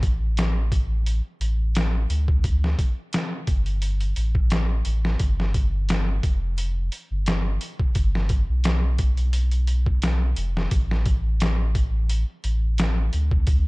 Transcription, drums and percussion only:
0.03 kick medium
0.03 closed hi-hat medium
0.37 snare loud
0.37 closed hi-hat medium
0.72 kick medium
0.72 closed hi-hat medium
1.06 closed hi-hat medium
1.41 closed hi-hat medium
1.75 snare loud
1.75 closed hi-hat medium
2.10 closed hi-hat medium
2.28 kick medium
2.44 kick loud
2.44 closed hi-hat medium
2.64 snare soft
2.79 kick medium
2.79 closed hi-hat medium
3.13 snare loud
3.13 closed hi-hat medium
3.47 kick medium
3.47 closed hi-hat medium
3.66 closed hi-hat soft
3.82 closed hi-hat medium
4.01 closed hi-hat soft
4.16 closed hi-hat medium
4.35 kick medium
4.50 snare loud
4.50 closed hi-hat medium
4.85 closed hi-hat medium
5.05 snare medium
5.19 kick medium
5.19 closed hi-hat medium
5.40 snare soft
5.54 kick medium
5.54 closed hi-hat medium
5.89 snare loud
5.89 closed hi-hat medium
6.23 kick medium
6.23 closed hi-hat medium
6.58 closed hi-hat medium
6.92 closed hi-hat medium
7.26 snare loud
7.26 closed hi-hat medium
7.61 closed hi-hat medium
7.79 kick medium
7.95 kick loud
7.95 closed hi-hat medium
8.15 snare soft
8.29 kick medium
8.29 closed hi-hat medium
8.64 snare loud
8.64 closed hi-hat medium
8.98 kick loud
8.98 closed hi-hat medium
9.17 closed hi-hat soft
9.33 closed hi-hat medium
9.52 closed hi-hat soft
9.67 closed hi-hat medium
9.86 kick medium
10.02 snare loud
10.02 closed hi-hat medium
10.36 closed hi-hat medium
10.57 snare medium
10.71 kick loud
10.71 closed hi-hat medium
10.91 snare soft
11.06 kick medium
11.06 closed hi-hat medium
11.40 snare loud
11.40 closed hi-hat medium
11.75 kick medium
11.75 closed hi-hat medium
12.10 closed hi-hat medium
12.44 closed hi-hat medium
12.78 snare loud
12.78 closed hi-hat medium
13.13 closed hi-hat medium
13.31 kick medium
13.47 kick loud
13.47 closed hi-hat medium

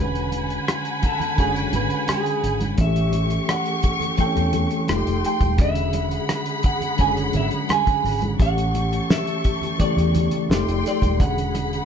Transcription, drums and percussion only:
0.15 closed hi-hat soft
0.32 closed hi-hat medium
0.32 muted conga soft
0.50 closed hi-hat soft
0.68 cross-stick medium
0.68 closed hi-hat medium
0.68 high conga medium
0.85 closed hi-hat soft
1.02 kick medium
1.02 closed hi-hat medium
1.02 muted conga soft
1.20 closed hi-hat soft
1.20 low conga medium
1.38 kick medium
1.38 closed hi-hat medium
1.56 closed hi-hat soft
1.73 closed hi-hat medium
1.73 muted conga medium
1.73 low conga medium
1.90 closed hi-hat soft
2.08 cross-stick loud
2.08 closed hi-hat medium
2.08 high conga medium
2.26 closed hi-hat soft
2.44 closed hi-hat medium
2.60 closed hi-hat medium
2.60 high conga medium
2.78 kick loud
2.78 closed hi-hat medium
2.96 closed hi-hat soft
3.13 closed hi-hat medium
3.13 muted conga medium
3.30 closed hi-hat soft
3.49 cross-stick loud
3.49 closed hi-hat medium
3.49 high conga medium
3.66 closed hi-hat soft
3.83 kick medium
3.83 closed hi-hat medium
3.83 muted conga soft
4.00 closed hi-hat soft
4.00 low conga medium
4.17 kick medium
4.17 closed hi-hat medium
4.17 muted conga soft
4.37 cross-stick soft
4.37 closed hi-hat soft
4.53 closed hi-hat medium
4.53 muted conga medium
4.53 low conga medium
4.71 closed hi-hat soft
4.88 cross-stick medium
4.88 closed hi-hat medium
4.88 high conga medium
5.07 closed hi-hat soft
5.24 cross-stick soft
5.24 closed hi-hat medium
5.41 kick medium
5.41 closed hi-hat soft
5.41 high conga medium
5.58 kick loud
5.58 closed hi-hat medium
5.75 closed hi-hat soft
5.93 closed hi-hat medium
5.93 muted conga medium
6.11 closed hi-hat soft
6.29 cross-stick medium
6.29 closed hi-hat medium
6.29 high conga medium
6.46 closed hi-hat soft
6.63 kick medium
6.63 closed hi-hat medium
6.63 muted conga soft
6.81 closed hi-hat soft
6.81 low conga soft
6.98 kick medium
6.98 closed hi-hat medium
7.17 cross-stick soft
7.17 closed hi-hat soft
7.33 closed hi-hat medium
7.33 muted conga soft
7.33 low conga medium
7.51 closed hi-hat soft
7.69 cross-stick loud
7.69 closed hi-hat medium
7.69 high conga medium
7.87 kick medium
7.87 closed hi-hat soft
8.05 cross-stick soft
8.05 open hi-hat soft
8.22 closed hi-hat soft
8.22 high conga medium
8.40 kick loud
8.40 closed hi-hat medium
8.58 closed hi-hat soft
8.74 closed hi-hat medium
8.74 muted conga soft
8.93 closed hi-hat medium
9.10 snare loud
9.10 high conga medium
9.27 closed hi-hat soft
9.44 kick medium
9.44 closed hi-hat medium
9.44 muted conga soft
9.61 closed hi-hat soft
9.61 low conga medium
9.80 kick medium
9.80 closed hi-hat medium
9.98 closed hi-hat medium
10.15 closed hi-hat medium
10.15 muted conga medium
10.15 low conga medium
10.31 closed hi-hat soft
10.50 snare medium
10.50 high conga medium
10.68 closed hi-hat soft
10.86 snare soft
10.86 closed hi-hat medium
11.02 kick medium
11.02 closed hi-hat soft
11.02 high conga medium
11.20 kick loud
11.20 closed hi-hat medium
11.38 closed hi-hat soft
11.54 closed hi-hat medium
11.54 muted conga medium
11.73 closed hi-hat soft

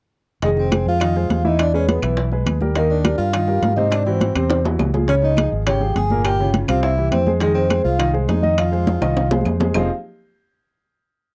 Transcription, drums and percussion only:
0.42 high bongo medium
0.42 high conga soft
0.42 high timbale medium
0.57 high bongo soft
0.57 high conga soft
0.72 high bongo medium
0.72 high conga medium
0.72 high timbale medium
0.72 claves medium
0.87 high conga soft
1.00 high bongo medium
1.00 high conga soft
1.00 high timbale medium
1.00 claves medium
1.16 high bongo soft
1.16 high conga soft
1.30 high bongo soft
1.30 low bongo medium
1.30 high conga medium
1.30 high timbale medium
1.30 low timbale medium
1.45 high bongo soft
1.45 high conga medium
1.59 high bongo medium
1.59 high conga soft
1.59 high timbale medium
1.59 claves medium
1.74 high bongo soft
1.74 high conga soft
1.89 high bongo medium
1.89 high conga medium
1.89 high timbale medium
2.02 high conga soft
2.02 high timbale medium
2.02 claves medium
2.17 high bongo medium
2.17 high conga soft
2.32 high bongo soft
2.32 high conga soft
2.46 high bongo soft
2.46 low bongo medium
2.46 high conga medium
2.46 high timbale medium
2.46 claves medium
2.61 high bongo soft
2.61 high conga medium
2.75 high bongo medium
2.75 high timbale medium
2.90 high bongo soft
2.90 high conga soft
3.05 high bongo medium
3.05 high conga loud
3.05 high timbale medium
3.05 claves medium
3.19 high conga soft
3.33 high bongo medium
3.33 high conga soft
3.33 high timbale medium
3.33 claves medium
3.48 high bongo soft
3.48 high conga soft
3.62 high bongo soft
3.62 low bongo medium
3.62 high conga medium
3.62 high timbale medium
3.62 low timbale medium
3.77 high bongo soft
3.77 high conga medium
3.92 high bongo medium
3.92 high conga soft
3.92 high timbale medium
3.92 claves medium
4.07 high bongo soft
4.07 high conga soft
4.21 high bongo medium
4.21 high conga medium
4.21 high timbale medium
4.36 high conga soft
4.36 high timbale medium
4.36 claves medium
4.50 high bongo medium
4.50 high conga soft
4.50 high timbale medium
4.65 high bongo soft
4.65 high conga soft
4.65 low timbale medium
4.79 high bongo soft
4.79 low bongo medium
4.79 high conga medium
4.79 low timbale medium
4.79 claves medium
4.94 high bongo soft
4.94 high conga medium
4.94 low timbale medium
5.08 high bongo medium
5.08 high timbale medium
5.23 high bongo soft
5.23 high conga soft
5.37 high bongo medium
5.37 high conga medium
5.37 high timbale medium
5.37 claves medium
5.53 high conga soft
5.67 high bongo medium
5.67 high conga soft
5.67 high timbale loud
5.67 claves medium
5.81 high bongo soft
5.81 high conga soft
5.96 high bongo soft
5.96 low bongo medium
5.96 high conga medium
5.96 high timbale medium
6.10 high bongo soft
6.10 high conga medium
6.25 high bongo medium
6.25 high conga soft
6.25 high timbale medium
6.25 claves medium
6.39 high bongo soft
6.39 high conga soft
6.54 high bongo medium
6.54 high conga medium
6.54 high timbale medium
6.68 high conga soft
6.68 high timbale medium
6.68 claves medium
6.83 high bongo medium
6.83 high conga soft
6.98 high bongo soft
6.98 high conga soft
7.12 high bongo soft
7.12 low bongo medium
7.12 high conga medium
7.12 high timbale medium
7.12 low timbale medium
7.12 claves medium
7.27 high bongo soft
7.27 high conga medium
7.40 high bongo medium
7.40 high conga soft
7.40 high timbale medium
7.56 high bongo soft
7.56 high conga soft
7.70 high bongo medium
7.70 high conga medium
7.70 high timbale medium
7.70 claves medium
7.85 high conga soft
7.99 high bongo medium
7.99 high conga soft
7.99 high timbale medium
7.99 claves medium
8.15 high bongo soft
8.15 high conga soft
8.29 high bongo soft
8.29 low bongo medium
8.29 high conga medium
8.29 high timbale medium
8.29 low timbale medium
8.43 high bongo soft
8.43 high conga medium
8.58 high bongo medium
8.58 high conga soft
8.58 high timbale medium
8.58 claves medium
8.73 high bongo soft
8.73 high conga soft
8.87 high bongo medium
8.87 high conga loud
8.87 high timbale medium
9.02 high bongo loud
9.02 high conga soft
9.02 high timbale medium
9.02 claves medium
9.17 low bongo medium
9.17 high conga soft
9.17 high timbale medium
9.31 low bongo medium
9.31 high conga medium
9.31 low timbale medium
9.41 high conga medium
9.45 low bongo medium
9.45 low timbale medium
9.45 claves medium
9.60 low bongo loud
9.60 low conga medium
9.60 low timbale medium
9.74 low bongo medium
9.74 low conga medium
9.74 low timbale medium
9.74 claves loud

